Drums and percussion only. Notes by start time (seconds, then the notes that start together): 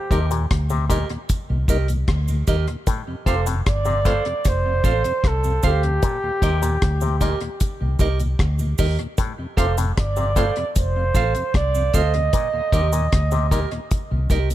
0.11 kick, closed hi-hat, cabasa
0.31 closed hi-hat, cabasa
0.51 kick, cross-stick, closed hi-hat
0.70 cabasa
0.90 kick, closed hi-hat, cabasa
1.09 closed hi-hat
1.29 kick, closed hi-hat, cabasa
1.68 kick, closed hi-hat, cabasa
1.88 closed hi-hat, cabasa
2.08 kick, cross-stick, closed hi-hat
2.28 cabasa
2.47 kick, closed hi-hat, cabasa
2.67 closed hi-hat
2.87 kick, closed hi-hat, cabasa
3.26 kick, closed hi-hat, cabasa
3.46 closed hi-hat, cabasa
3.66 kick, cross-stick, closed hi-hat
3.85 cabasa
4.05 kick, closed hi-hat, cabasa
4.25 closed hi-hat
4.45 kick, cross-stick, closed hi-hat, cabasa
4.84 kick, closed hi-hat, cabasa
5.04 closed hi-hat, cabasa
5.24 kick, cross-stick, closed hi-hat
5.44 cabasa
5.63 kick, closed hi-hat, cabasa
5.83 closed hi-hat
6.03 kick, closed hi-hat, cabasa
6.42 kick, closed hi-hat, cabasa
6.62 closed hi-hat, cabasa
6.82 kick, cross-stick, closed hi-hat
7.01 cabasa
7.21 kick, closed hi-hat, cabasa
7.41 closed hi-hat
7.60 kick, closed hi-hat, cabasa
7.99 kick, closed hi-hat, cabasa
8.20 closed hi-hat, cabasa
8.39 kick, cross-stick, closed hi-hat
8.59 cabasa
8.78 kick, open hi-hat, cabasa
8.99 closed hi-hat
9.18 kick, closed hi-hat, cabasa
9.57 kick, closed hi-hat, cabasa
9.78 closed hi-hat, cabasa
9.97 kick, cross-stick, closed hi-hat
10.16 cabasa
10.36 kick, closed hi-hat, cabasa
10.56 closed hi-hat
10.76 kick, closed hi-hat, cabasa
11.15 kick, closed hi-hat, cabasa
11.35 closed hi-hat, cabasa
11.54 kick, cross-stick, closed hi-hat
11.75 cabasa
11.94 kick, closed hi-hat, cabasa
12.14 closed hi-hat
12.33 kick, closed hi-hat, cabasa
12.72 kick, closed hi-hat, cabasa
12.92 closed hi-hat, cabasa
13.12 kick, cross-stick, closed hi-hat
13.31 cabasa
13.51 kick, closed hi-hat, cabasa
13.71 closed hi-hat
13.91 kick, closed hi-hat, cabasa
14.30 kick, closed hi-hat, cabasa
14.50 closed hi-hat, cabasa